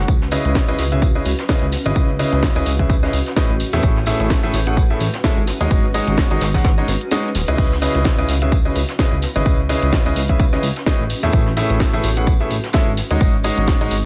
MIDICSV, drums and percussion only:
0, 0, Header, 1, 2, 480
1, 0, Start_track
1, 0, Key_signature, 4, "minor"
1, 0, Tempo, 468750
1, 85, Time_signature, 4, 2, 24, 8
1, 14389, End_track
2, 0, Start_track
2, 0, Title_t, "Drums"
2, 83, Note_on_c, 9, 54, 76
2, 85, Note_on_c, 9, 36, 115
2, 86, Note_on_c, 9, 42, 59
2, 186, Note_off_c, 9, 54, 0
2, 187, Note_off_c, 9, 36, 0
2, 188, Note_off_c, 9, 42, 0
2, 221, Note_on_c, 9, 38, 45
2, 320, Note_on_c, 9, 54, 66
2, 322, Note_off_c, 9, 38, 0
2, 322, Note_on_c, 9, 38, 52
2, 326, Note_on_c, 9, 46, 98
2, 423, Note_off_c, 9, 54, 0
2, 425, Note_off_c, 9, 38, 0
2, 428, Note_off_c, 9, 46, 0
2, 461, Note_on_c, 9, 42, 47
2, 564, Note_off_c, 9, 42, 0
2, 565, Note_on_c, 9, 36, 115
2, 566, Note_on_c, 9, 38, 112
2, 566, Note_on_c, 9, 42, 59
2, 568, Note_on_c, 9, 54, 90
2, 571, Note_off_c, 9, 38, 0
2, 571, Note_on_c, 9, 38, 104
2, 667, Note_off_c, 9, 36, 0
2, 668, Note_off_c, 9, 42, 0
2, 670, Note_off_c, 9, 54, 0
2, 673, Note_off_c, 9, 38, 0
2, 802, Note_on_c, 9, 38, 41
2, 805, Note_on_c, 9, 46, 91
2, 805, Note_on_c, 9, 54, 59
2, 904, Note_off_c, 9, 38, 0
2, 908, Note_off_c, 9, 46, 0
2, 908, Note_off_c, 9, 54, 0
2, 941, Note_on_c, 9, 42, 47
2, 1043, Note_off_c, 9, 42, 0
2, 1045, Note_on_c, 9, 36, 113
2, 1046, Note_on_c, 9, 42, 56
2, 1049, Note_on_c, 9, 54, 83
2, 1147, Note_off_c, 9, 36, 0
2, 1148, Note_off_c, 9, 42, 0
2, 1152, Note_off_c, 9, 54, 0
2, 1283, Note_on_c, 9, 54, 68
2, 1285, Note_on_c, 9, 46, 107
2, 1385, Note_off_c, 9, 54, 0
2, 1388, Note_off_c, 9, 46, 0
2, 1419, Note_on_c, 9, 38, 45
2, 1421, Note_on_c, 9, 42, 49
2, 1521, Note_off_c, 9, 38, 0
2, 1522, Note_on_c, 9, 54, 83
2, 1524, Note_off_c, 9, 42, 0
2, 1524, Note_on_c, 9, 38, 120
2, 1525, Note_on_c, 9, 36, 118
2, 1526, Note_off_c, 9, 38, 0
2, 1526, Note_on_c, 9, 38, 107
2, 1526, Note_on_c, 9, 42, 61
2, 1624, Note_off_c, 9, 54, 0
2, 1627, Note_off_c, 9, 36, 0
2, 1628, Note_off_c, 9, 38, 0
2, 1628, Note_off_c, 9, 42, 0
2, 1760, Note_on_c, 9, 54, 67
2, 1763, Note_on_c, 9, 38, 44
2, 1766, Note_on_c, 9, 46, 91
2, 1862, Note_off_c, 9, 54, 0
2, 1865, Note_off_c, 9, 38, 0
2, 1868, Note_off_c, 9, 46, 0
2, 1901, Note_on_c, 9, 42, 56
2, 2004, Note_off_c, 9, 42, 0
2, 2005, Note_on_c, 9, 36, 109
2, 2006, Note_on_c, 9, 42, 60
2, 2015, Note_on_c, 9, 54, 83
2, 2108, Note_off_c, 9, 36, 0
2, 2108, Note_off_c, 9, 42, 0
2, 2117, Note_off_c, 9, 54, 0
2, 2138, Note_on_c, 9, 42, 44
2, 2240, Note_off_c, 9, 42, 0
2, 2245, Note_on_c, 9, 46, 99
2, 2252, Note_on_c, 9, 54, 67
2, 2348, Note_off_c, 9, 46, 0
2, 2355, Note_off_c, 9, 54, 0
2, 2381, Note_on_c, 9, 42, 48
2, 2484, Note_off_c, 9, 42, 0
2, 2484, Note_on_c, 9, 38, 109
2, 2485, Note_on_c, 9, 36, 110
2, 2486, Note_off_c, 9, 38, 0
2, 2486, Note_on_c, 9, 38, 105
2, 2486, Note_on_c, 9, 42, 62
2, 2488, Note_on_c, 9, 54, 84
2, 2588, Note_off_c, 9, 36, 0
2, 2588, Note_off_c, 9, 38, 0
2, 2588, Note_off_c, 9, 42, 0
2, 2590, Note_off_c, 9, 54, 0
2, 2623, Note_on_c, 9, 42, 46
2, 2725, Note_off_c, 9, 42, 0
2, 2725, Note_on_c, 9, 46, 85
2, 2727, Note_on_c, 9, 54, 62
2, 2828, Note_off_c, 9, 46, 0
2, 2829, Note_off_c, 9, 54, 0
2, 2861, Note_on_c, 9, 36, 58
2, 2861, Note_on_c, 9, 42, 52
2, 2963, Note_off_c, 9, 36, 0
2, 2963, Note_off_c, 9, 42, 0
2, 2965, Note_on_c, 9, 36, 114
2, 2965, Note_on_c, 9, 54, 80
2, 2966, Note_on_c, 9, 42, 61
2, 3068, Note_off_c, 9, 36, 0
2, 3068, Note_off_c, 9, 42, 0
2, 3068, Note_off_c, 9, 54, 0
2, 3106, Note_on_c, 9, 38, 47
2, 3206, Note_on_c, 9, 46, 102
2, 3207, Note_on_c, 9, 54, 64
2, 3209, Note_off_c, 9, 38, 0
2, 3308, Note_off_c, 9, 46, 0
2, 3309, Note_off_c, 9, 54, 0
2, 3341, Note_on_c, 9, 42, 50
2, 3343, Note_on_c, 9, 38, 45
2, 3444, Note_off_c, 9, 42, 0
2, 3444, Note_on_c, 9, 54, 89
2, 3445, Note_off_c, 9, 38, 0
2, 3445, Note_on_c, 9, 36, 115
2, 3446, Note_on_c, 9, 38, 107
2, 3446, Note_on_c, 9, 42, 62
2, 3447, Note_off_c, 9, 38, 0
2, 3447, Note_on_c, 9, 38, 118
2, 3547, Note_off_c, 9, 54, 0
2, 3548, Note_off_c, 9, 36, 0
2, 3548, Note_off_c, 9, 42, 0
2, 3549, Note_off_c, 9, 38, 0
2, 3686, Note_on_c, 9, 46, 86
2, 3691, Note_on_c, 9, 54, 62
2, 3788, Note_off_c, 9, 46, 0
2, 3793, Note_off_c, 9, 54, 0
2, 3821, Note_on_c, 9, 38, 47
2, 3821, Note_on_c, 9, 42, 60
2, 3921, Note_on_c, 9, 54, 80
2, 3924, Note_off_c, 9, 38, 0
2, 3924, Note_off_c, 9, 42, 0
2, 3925, Note_on_c, 9, 36, 105
2, 3926, Note_on_c, 9, 42, 61
2, 4023, Note_off_c, 9, 54, 0
2, 4028, Note_off_c, 9, 36, 0
2, 4028, Note_off_c, 9, 42, 0
2, 4056, Note_on_c, 9, 38, 41
2, 4157, Note_on_c, 9, 54, 66
2, 4159, Note_off_c, 9, 38, 0
2, 4166, Note_on_c, 9, 38, 54
2, 4166, Note_on_c, 9, 46, 94
2, 4259, Note_off_c, 9, 54, 0
2, 4268, Note_off_c, 9, 46, 0
2, 4269, Note_off_c, 9, 38, 0
2, 4301, Note_on_c, 9, 42, 51
2, 4402, Note_on_c, 9, 38, 107
2, 4404, Note_off_c, 9, 42, 0
2, 4405, Note_on_c, 9, 36, 110
2, 4406, Note_off_c, 9, 38, 0
2, 4406, Note_on_c, 9, 38, 111
2, 4406, Note_on_c, 9, 42, 66
2, 4413, Note_on_c, 9, 54, 83
2, 4508, Note_off_c, 9, 36, 0
2, 4508, Note_off_c, 9, 38, 0
2, 4508, Note_off_c, 9, 42, 0
2, 4515, Note_off_c, 9, 54, 0
2, 4646, Note_on_c, 9, 46, 85
2, 4647, Note_on_c, 9, 38, 43
2, 4648, Note_on_c, 9, 54, 60
2, 4748, Note_off_c, 9, 46, 0
2, 4750, Note_off_c, 9, 38, 0
2, 4750, Note_off_c, 9, 54, 0
2, 4781, Note_on_c, 9, 42, 53
2, 4884, Note_off_c, 9, 42, 0
2, 4885, Note_on_c, 9, 36, 109
2, 4886, Note_on_c, 9, 42, 62
2, 4893, Note_on_c, 9, 54, 84
2, 4988, Note_off_c, 9, 36, 0
2, 4988, Note_off_c, 9, 42, 0
2, 4996, Note_off_c, 9, 54, 0
2, 5123, Note_on_c, 9, 54, 71
2, 5126, Note_on_c, 9, 46, 99
2, 5225, Note_off_c, 9, 54, 0
2, 5228, Note_off_c, 9, 46, 0
2, 5256, Note_on_c, 9, 38, 50
2, 5261, Note_on_c, 9, 42, 50
2, 5358, Note_off_c, 9, 38, 0
2, 5363, Note_off_c, 9, 42, 0
2, 5365, Note_on_c, 9, 36, 112
2, 5365, Note_on_c, 9, 42, 65
2, 5366, Note_on_c, 9, 38, 109
2, 5366, Note_on_c, 9, 54, 84
2, 5367, Note_off_c, 9, 38, 0
2, 5367, Note_on_c, 9, 38, 102
2, 5467, Note_off_c, 9, 36, 0
2, 5468, Note_off_c, 9, 42, 0
2, 5468, Note_off_c, 9, 54, 0
2, 5469, Note_off_c, 9, 38, 0
2, 5602, Note_on_c, 9, 38, 45
2, 5603, Note_on_c, 9, 54, 73
2, 5605, Note_on_c, 9, 46, 85
2, 5704, Note_off_c, 9, 38, 0
2, 5706, Note_off_c, 9, 54, 0
2, 5708, Note_off_c, 9, 46, 0
2, 5741, Note_on_c, 9, 42, 60
2, 5843, Note_off_c, 9, 42, 0
2, 5845, Note_on_c, 9, 36, 114
2, 5846, Note_on_c, 9, 42, 64
2, 5851, Note_on_c, 9, 54, 86
2, 5947, Note_off_c, 9, 36, 0
2, 5948, Note_off_c, 9, 42, 0
2, 5954, Note_off_c, 9, 54, 0
2, 5984, Note_on_c, 9, 42, 44
2, 6084, Note_on_c, 9, 54, 70
2, 6085, Note_on_c, 9, 46, 100
2, 6086, Note_off_c, 9, 42, 0
2, 6186, Note_off_c, 9, 54, 0
2, 6188, Note_off_c, 9, 46, 0
2, 6221, Note_on_c, 9, 42, 52
2, 6321, Note_on_c, 9, 54, 80
2, 6324, Note_off_c, 9, 42, 0
2, 6325, Note_on_c, 9, 36, 108
2, 6326, Note_on_c, 9, 38, 112
2, 6326, Note_on_c, 9, 42, 68
2, 6330, Note_off_c, 9, 38, 0
2, 6330, Note_on_c, 9, 38, 110
2, 6423, Note_off_c, 9, 54, 0
2, 6427, Note_off_c, 9, 36, 0
2, 6428, Note_off_c, 9, 42, 0
2, 6432, Note_off_c, 9, 38, 0
2, 6463, Note_on_c, 9, 42, 44
2, 6565, Note_off_c, 9, 42, 0
2, 6566, Note_on_c, 9, 46, 86
2, 6566, Note_on_c, 9, 54, 82
2, 6568, Note_on_c, 9, 38, 93
2, 6668, Note_off_c, 9, 46, 0
2, 6668, Note_off_c, 9, 54, 0
2, 6671, Note_off_c, 9, 38, 0
2, 6700, Note_on_c, 9, 36, 60
2, 6701, Note_on_c, 9, 38, 91
2, 6701, Note_on_c, 9, 42, 54
2, 6703, Note_on_c, 9, 54, 70
2, 6803, Note_off_c, 9, 36, 0
2, 6803, Note_off_c, 9, 38, 0
2, 6803, Note_on_c, 9, 38, 105
2, 6804, Note_off_c, 9, 42, 0
2, 6805, Note_off_c, 9, 54, 0
2, 6805, Note_on_c, 9, 36, 117
2, 6805, Note_on_c, 9, 42, 62
2, 6806, Note_on_c, 9, 54, 83
2, 6905, Note_off_c, 9, 38, 0
2, 6907, Note_off_c, 9, 36, 0
2, 6908, Note_off_c, 9, 42, 0
2, 6908, Note_off_c, 9, 54, 0
2, 7044, Note_on_c, 9, 54, 67
2, 7045, Note_on_c, 9, 46, 99
2, 7052, Note_on_c, 9, 38, 37
2, 7146, Note_off_c, 9, 54, 0
2, 7148, Note_off_c, 9, 46, 0
2, 7155, Note_off_c, 9, 38, 0
2, 7180, Note_on_c, 9, 42, 53
2, 7280, Note_on_c, 9, 54, 73
2, 7283, Note_off_c, 9, 42, 0
2, 7285, Note_on_c, 9, 38, 117
2, 7285, Note_on_c, 9, 42, 68
2, 7382, Note_off_c, 9, 54, 0
2, 7387, Note_off_c, 9, 42, 0
2, 7388, Note_off_c, 9, 38, 0
2, 7525, Note_on_c, 9, 46, 86
2, 7528, Note_on_c, 9, 38, 45
2, 7529, Note_on_c, 9, 54, 56
2, 7627, Note_off_c, 9, 46, 0
2, 7630, Note_off_c, 9, 38, 0
2, 7631, Note_off_c, 9, 54, 0
2, 7660, Note_on_c, 9, 42, 61
2, 7763, Note_off_c, 9, 42, 0
2, 7765, Note_on_c, 9, 36, 109
2, 7765, Note_on_c, 9, 42, 62
2, 7765, Note_on_c, 9, 49, 71
2, 7769, Note_on_c, 9, 54, 86
2, 7867, Note_off_c, 9, 36, 0
2, 7867, Note_off_c, 9, 42, 0
2, 7867, Note_off_c, 9, 49, 0
2, 7871, Note_off_c, 9, 54, 0
2, 7909, Note_on_c, 9, 38, 43
2, 8002, Note_on_c, 9, 54, 73
2, 8003, Note_off_c, 9, 38, 0
2, 8003, Note_on_c, 9, 38, 53
2, 8005, Note_on_c, 9, 46, 102
2, 8105, Note_off_c, 9, 38, 0
2, 8105, Note_off_c, 9, 54, 0
2, 8107, Note_off_c, 9, 46, 0
2, 8140, Note_on_c, 9, 42, 53
2, 8238, Note_on_c, 9, 54, 92
2, 8243, Note_off_c, 9, 42, 0
2, 8245, Note_on_c, 9, 36, 116
2, 8245, Note_on_c, 9, 38, 118
2, 8245, Note_on_c, 9, 42, 65
2, 8249, Note_off_c, 9, 38, 0
2, 8249, Note_on_c, 9, 38, 106
2, 8340, Note_off_c, 9, 54, 0
2, 8347, Note_off_c, 9, 36, 0
2, 8347, Note_off_c, 9, 42, 0
2, 8351, Note_off_c, 9, 38, 0
2, 8484, Note_on_c, 9, 54, 64
2, 8485, Note_on_c, 9, 46, 93
2, 8490, Note_on_c, 9, 38, 40
2, 8586, Note_off_c, 9, 54, 0
2, 8587, Note_off_c, 9, 46, 0
2, 8592, Note_off_c, 9, 38, 0
2, 8620, Note_on_c, 9, 42, 56
2, 8723, Note_off_c, 9, 42, 0
2, 8725, Note_on_c, 9, 36, 118
2, 8725, Note_on_c, 9, 42, 64
2, 8730, Note_on_c, 9, 54, 86
2, 8827, Note_off_c, 9, 36, 0
2, 8827, Note_off_c, 9, 42, 0
2, 8832, Note_off_c, 9, 54, 0
2, 8965, Note_on_c, 9, 46, 100
2, 8968, Note_on_c, 9, 54, 66
2, 9067, Note_off_c, 9, 46, 0
2, 9071, Note_off_c, 9, 54, 0
2, 9099, Note_on_c, 9, 38, 52
2, 9101, Note_on_c, 9, 42, 55
2, 9201, Note_off_c, 9, 38, 0
2, 9203, Note_off_c, 9, 42, 0
2, 9203, Note_on_c, 9, 38, 105
2, 9205, Note_off_c, 9, 38, 0
2, 9205, Note_on_c, 9, 36, 118
2, 9205, Note_on_c, 9, 38, 118
2, 9205, Note_on_c, 9, 42, 66
2, 9212, Note_on_c, 9, 54, 80
2, 9307, Note_off_c, 9, 36, 0
2, 9308, Note_off_c, 9, 38, 0
2, 9308, Note_off_c, 9, 42, 0
2, 9314, Note_off_c, 9, 54, 0
2, 9440, Note_on_c, 9, 54, 67
2, 9445, Note_on_c, 9, 38, 41
2, 9445, Note_on_c, 9, 46, 93
2, 9543, Note_off_c, 9, 54, 0
2, 9547, Note_off_c, 9, 46, 0
2, 9548, Note_off_c, 9, 38, 0
2, 9581, Note_on_c, 9, 42, 66
2, 9683, Note_off_c, 9, 42, 0
2, 9683, Note_on_c, 9, 54, 80
2, 9685, Note_on_c, 9, 36, 119
2, 9685, Note_on_c, 9, 42, 61
2, 9785, Note_off_c, 9, 54, 0
2, 9787, Note_off_c, 9, 36, 0
2, 9788, Note_off_c, 9, 42, 0
2, 9821, Note_on_c, 9, 42, 43
2, 9924, Note_off_c, 9, 42, 0
2, 9925, Note_on_c, 9, 46, 101
2, 9925, Note_on_c, 9, 54, 64
2, 10027, Note_off_c, 9, 46, 0
2, 10028, Note_off_c, 9, 54, 0
2, 10060, Note_on_c, 9, 42, 49
2, 10161, Note_on_c, 9, 54, 79
2, 10163, Note_off_c, 9, 42, 0
2, 10165, Note_on_c, 9, 36, 117
2, 10165, Note_on_c, 9, 38, 119
2, 10165, Note_on_c, 9, 42, 65
2, 10169, Note_off_c, 9, 38, 0
2, 10169, Note_on_c, 9, 38, 119
2, 10263, Note_off_c, 9, 54, 0
2, 10267, Note_off_c, 9, 36, 0
2, 10267, Note_off_c, 9, 42, 0
2, 10271, Note_off_c, 9, 38, 0
2, 10302, Note_on_c, 9, 42, 39
2, 10403, Note_on_c, 9, 54, 61
2, 10404, Note_off_c, 9, 42, 0
2, 10405, Note_on_c, 9, 46, 95
2, 10505, Note_off_c, 9, 54, 0
2, 10507, Note_off_c, 9, 46, 0
2, 10540, Note_on_c, 9, 36, 62
2, 10541, Note_on_c, 9, 42, 53
2, 10642, Note_on_c, 9, 54, 78
2, 10643, Note_off_c, 9, 36, 0
2, 10643, Note_off_c, 9, 42, 0
2, 10645, Note_on_c, 9, 36, 123
2, 10645, Note_on_c, 9, 42, 65
2, 10744, Note_off_c, 9, 54, 0
2, 10747, Note_off_c, 9, 36, 0
2, 10748, Note_off_c, 9, 42, 0
2, 10776, Note_on_c, 9, 38, 45
2, 10878, Note_off_c, 9, 38, 0
2, 10883, Note_on_c, 9, 54, 68
2, 10885, Note_on_c, 9, 46, 104
2, 10985, Note_off_c, 9, 54, 0
2, 10988, Note_off_c, 9, 46, 0
2, 11021, Note_on_c, 9, 42, 54
2, 11022, Note_on_c, 9, 38, 42
2, 11123, Note_off_c, 9, 42, 0
2, 11124, Note_off_c, 9, 38, 0
2, 11124, Note_on_c, 9, 38, 109
2, 11125, Note_on_c, 9, 36, 122
2, 11125, Note_on_c, 9, 42, 64
2, 11126, Note_off_c, 9, 38, 0
2, 11126, Note_on_c, 9, 38, 121
2, 11127, Note_on_c, 9, 54, 91
2, 11227, Note_off_c, 9, 36, 0
2, 11228, Note_off_c, 9, 38, 0
2, 11228, Note_off_c, 9, 42, 0
2, 11229, Note_off_c, 9, 54, 0
2, 11365, Note_on_c, 9, 46, 94
2, 11365, Note_on_c, 9, 54, 66
2, 11467, Note_off_c, 9, 54, 0
2, 11468, Note_off_c, 9, 46, 0
2, 11501, Note_on_c, 9, 42, 60
2, 11508, Note_on_c, 9, 38, 50
2, 11597, Note_on_c, 9, 54, 90
2, 11603, Note_off_c, 9, 42, 0
2, 11605, Note_on_c, 9, 36, 121
2, 11606, Note_on_c, 9, 42, 61
2, 11610, Note_off_c, 9, 38, 0
2, 11700, Note_off_c, 9, 54, 0
2, 11707, Note_off_c, 9, 36, 0
2, 11708, Note_off_c, 9, 42, 0
2, 11736, Note_on_c, 9, 38, 45
2, 11839, Note_off_c, 9, 38, 0
2, 11845, Note_on_c, 9, 46, 107
2, 11845, Note_on_c, 9, 54, 64
2, 11846, Note_on_c, 9, 38, 53
2, 11948, Note_off_c, 9, 38, 0
2, 11948, Note_off_c, 9, 46, 0
2, 11948, Note_off_c, 9, 54, 0
2, 11981, Note_on_c, 9, 42, 52
2, 12084, Note_off_c, 9, 42, 0
2, 12085, Note_on_c, 9, 36, 118
2, 12085, Note_on_c, 9, 42, 62
2, 12086, Note_on_c, 9, 38, 118
2, 12088, Note_off_c, 9, 38, 0
2, 12088, Note_on_c, 9, 38, 122
2, 12089, Note_on_c, 9, 54, 90
2, 12187, Note_off_c, 9, 36, 0
2, 12188, Note_off_c, 9, 42, 0
2, 12191, Note_off_c, 9, 38, 0
2, 12191, Note_off_c, 9, 54, 0
2, 12320, Note_on_c, 9, 38, 40
2, 12325, Note_on_c, 9, 46, 100
2, 12327, Note_on_c, 9, 54, 64
2, 12422, Note_off_c, 9, 38, 0
2, 12428, Note_off_c, 9, 46, 0
2, 12430, Note_off_c, 9, 54, 0
2, 12461, Note_on_c, 9, 42, 49
2, 12563, Note_off_c, 9, 42, 0
2, 12565, Note_on_c, 9, 36, 123
2, 12565, Note_on_c, 9, 42, 60
2, 12567, Note_on_c, 9, 54, 84
2, 12668, Note_off_c, 9, 36, 0
2, 12668, Note_off_c, 9, 42, 0
2, 12670, Note_off_c, 9, 54, 0
2, 12804, Note_on_c, 9, 54, 72
2, 12805, Note_on_c, 9, 46, 106
2, 12907, Note_off_c, 9, 54, 0
2, 12908, Note_off_c, 9, 46, 0
2, 12939, Note_on_c, 9, 38, 52
2, 12941, Note_on_c, 9, 42, 50
2, 13035, Note_off_c, 9, 38, 0
2, 13035, Note_on_c, 9, 38, 98
2, 13035, Note_on_c, 9, 54, 92
2, 13043, Note_off_c, 9, 42, 0
2, 13045, Note_off_c, 9, 38, 0
2, 13045, Note_on_c, 9, 36, 124
2, 13045, Note_on_c, 9, 38, 112
2, 13045, Note_on_c, 9, 42, 62
2, 13138, Note_off_c, 9, 54, 0
2, 13147, Note_off_c, 9, 38, 0
2, 13147, Note_off_c, 9, 42, 0
2, 13148, Note_off_c, 9, 36, 0
2, 13283, Note_on_c, 9, 54, 70
2, 13285, Note_on_c, 9, 46, 96
2, 13287, Note_on_c, 9, 38, 42
2, 13386, Note_off_c, 9, 54, 0
2, 13387, Note_off_c, 9, 46, 0
2, 13389, Note_off_c, 9, 38, 0
2, 13420, Note_on_c, 9, 42, 59
2, 13523, Note_off_c, 9, 42, 0
2, 13525, Note_on_c, 9, 36, 121
2, 13525, Note_on_c, 9, 42, 60
2, 13533, Note_on_c, 9, 54, 91
2, 13627, Note_off_c, 9, 42, 0
2, 13628, Note_off_c, 9, 36, 0
2, 13635, Note_off_c, 9, 54, 0
2, 13653, Note_on_c, 9, 42, 42
2, 13755, Note_off_c, 9, 42, 0
2, 13759, Note_on_c, 9, 54, 63
2, 13765, Note_on_c, 9, 46, 112
2, 13861, Note_off_c, 9, 54, 0
2, 13867, Note_off_c, 9, 46, 0
2, 13900, Note_on_c, 9, 42, 49
2, 14000, Note_on_c, 9, 38, 102
2, 14003, Note_off_c, 9, 42, 0
2, 14005, Note_off_c, 9, 38, 0
2, 14005, Note_on_c, 9, 36, 117
2, 14005, Note_on_c, 9, 38, 109
2, 14005, Note_on_c, 9, 42, 60
2, 14005, Note_on_c, 9, 54, 86
2, 14107, Note_off_c, 9, 38, 0
2, 14107, Note_off_c, 9, 42, 0
2, 14107, Note_off_c, 9, 54, 0
2, 14108, Note_off_c, 9, 36, 0
2, 14149, Note_on_c, 9, 42, 47
2, 14245, Note_on_c, 9, 46, 96
2, 14249, Note_on_c, 9, 54, 65
2, 14251, Note_off_c, 9, 42, 0
2, 14347, Note_off_c, 9, 46, 0
2, 14351, Note_off_c, 9, 54, 0
2, 14389, End_track
0, 0, End_of_file